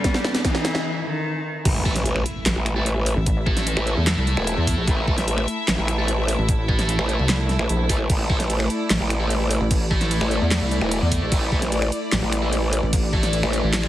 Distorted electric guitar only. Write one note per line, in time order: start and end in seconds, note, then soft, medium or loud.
1.85 1.93 A3 medium
1.85 1.93 E4 medium
1.85 1.93 A4 loud
2.76 2.88 A3 medium
2.76 2.88 E4 medium
2.76 2.88 A4 medium
3.46 4.05 A3 medium
3.46 4.05 E4 medium
3.46 4.05 A4 loud
4.07 5.05 A3 medium
4.07 5.05 E4 medium
4.07 5.05 A4 medium
5.07 5.15 A3 medium
5.07 5.15 E4 medium
5.07 5.15 A4 loud
5.98 6.10 A3 medium
5.98 6.10 E4 medium
5.98 6.10 A4 medium
6.68 7.27 A3 medium
6.68 7.27 E4 medium
6.68 7.27 A4 loud
7.89 7.97 A3 medium
7.89 7.97 E4 medium
7.89 7.97 A4 loud
8.30 8.37 A3 medium
8.30 8.37 E4 medium
8.30 8.37 A4 loud
9.20 9.32 A3 medium
9.20 9.32 E4 medium
9.20 9.32 A4 medium
9.91 10.49 A3 medium
9.91 10.49 E4 medium
9.91 10.49 A4 loud
10.51 11.50 A3 medium
10.51 11.50 E4 medium
10.51 11.50 A4 medium
11.52 11.59 A3 medium
11.52 11.59 E4 medium
11.52 11.59 A4 loud
12.42 12.54 A3 medium
12.42 12.54 E4 medium
12.42 12.54 A4 medium
13.13 13.71 A3 medium
13.13 13.71 E4 medium
13.13 13.71 A4 loud
13.73 13.88 A3 medium
13.73 13.88 E4 medium
13.73 13.88 A4 medium